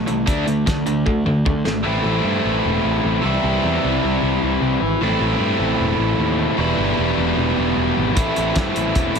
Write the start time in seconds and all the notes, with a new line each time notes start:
0.07 C2 E3 A3, closed hi-hat
0.26 D2 D3 A3 D4, kick, closed hi-hat
0.46 D2 D3 A3, closed hi-hat
0.66 D2 D3 A3, kick, snare, closed hi-hat
0.86 D2 D3 A3, closed hi-hat
1.06 D2 D3 A3, kick, high tom
1.25 D2 D3 A3, mid tom
1.45 D2 D3 A3, kick, mid tom
1.65 G#1 D3 A3, snare
1.83 A1 A2 E3 A3 C4 E4
2.04 A1
2.24 G2
2.45 A1
2.65 E1
2.85 A1
3.04 A1
3.22 C2 C3 E3 G3 C4 E4
3.44 C2
3.63 E2
3.84 C2
4.04 C2
4.23 C2
4.43 C2
4.62 C2
4.82 G#1
5.01 A1 A2 E3 A3 C4 E4
5.20 A1
5.40 G2
5.60 A1
5.80 E1
5.99 A1
6.19 D#2
6.57 E1 E2 B2 E3 G3 B3 E4
6.78 G1
6.99 E1
7.18 E1
7.37 E1
7.58 E1
7.77 E1
7.97 G#1
8.16 A1 A2 E3 A3 C4 E4, kick, closed hi-hat
8.36 A1, closed hi-hat
8.56 G2, kick, snare, closed hi-hat
8.76 A1, closed hi-hat
8.95 E1, kick, closed hi-hat
9.15 A1, closed hi-hat